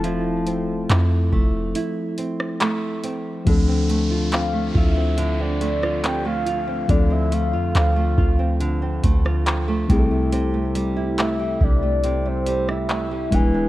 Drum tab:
HH |x-x-x---x-x-x-x-|x-x-x---x-x-x-x-|x-x-x---x-x-x-x-|x-x-x---x-x-x-x-|
CP |----x-------x---|----x-------x---|----x-------x---|----x-------x---|
SD |-----------r----|-----------r----|-----------r----|-----------r----|
BD |------o---------|o-----o---------|o-----o---o---o-|------o-------o-|